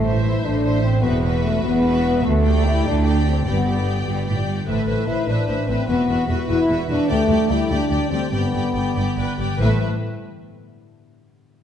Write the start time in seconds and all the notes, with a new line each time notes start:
Already playing: A1 A2 E3 A3
0.01 B2 C5 E5
0.11 E4
0.22 E4 C5
0.32 A4
0.42 A1 A2 D4 E5
0.52 B5
0.62 C5 E5
0.82 C4 E4
0.92 B3
1.02 E1 E2 E3 B3 F#4 B4 E5
1.13 E4
1.22 B3 F#4 B4 E5
1.33 F#4
1.42 A3 B4
1.53 F#4
1.63 E1 E2 B3 F#5
1.73 B5
1.83 F#4 B4 E5 F#5
1.93 B4
2.04 F#4
2.14 B3
2.23 D2 D3 A3
2.33 A3
2.44 D4 G4 D5 G5
2.54 G4
2.64 D4 E4
2.74 D5
2.83 D2 D4 G5
2.94 D5
3.04 G4 D5 G5
3.14 D5
3.24 G4
3.28 C4
3.34 D4
3.45 G1 G2 B3 G4 D5 G5
3.54 D3
3.65 D4 G4 D5 G5
3.75 G4
3.86 B4
3.96 D5
4.06 G1 G2 G5
4.16 B5
4.26 A2 G4 D5 G5
4.36 D5
4.46 G2 G4
4.56 D4
4.66 A1 A2 A3 B4 C5 E5
4.78 E3
4.87 A1 A2 C4 B4 C5 E5
4.98 E4
5.06 A1 A2 E4 B4 C5 E5
5.18 C5
5.26 A1 A2 D4 B4 C5 E5
5.39 B5
5.48 A1 A2 B4 C5 E5
5.59 C5
5.67 A1 A2 C4 E4 B4 C5 E5
5.79 C4
5.88 E1 E2 E3 B3 F#4 B4 E5
5.99 E4
6.08 E1 E2 B3 F#4 B4 E5
6.19 F#4
6.28 E1 E2 F#4 B4 E5
6.39 F#4
6.48 E1 E2 E4 F#4 B4 E5 F#5
6.59 B5
6.68 E1 E2 F#4 B4 E5 F#5
6.78 B4
6.88 E1 E2 D4 F#4 B4 E5
6.99 B3
7.08 D2 D3 A3 G4 D5 G5
7.19 D4
7.28 D2 G3 G4 D5 G5
7.49 D2 E4 G4 D5 G5
7.60 G4
7.69 D2 D4 G4 D5 G5
7.80 D6
7.90 D2 G4 D5 G5
8.01 G4
8.09 D2 G3 C4 G4 D5 G5
8.22 D4
8.31 G1 G2 B3 G4 D5 G5
8.43 D3
8.53 G1 G2 G3 G4 D5 G5
8.65 G4
8.74 G1 G2 G4 D5 G5
8.86 G4
8.95 G1 G2 G4 D5 G5
9.18 G1 G2 B4 D5 G5
9.29 G4
9.39 G1 G2 G3 G4 D5 G5
9.51 D3
9.58 A1 A2 A3 B3 B4 C5 E5
9.62 A2 E4 E5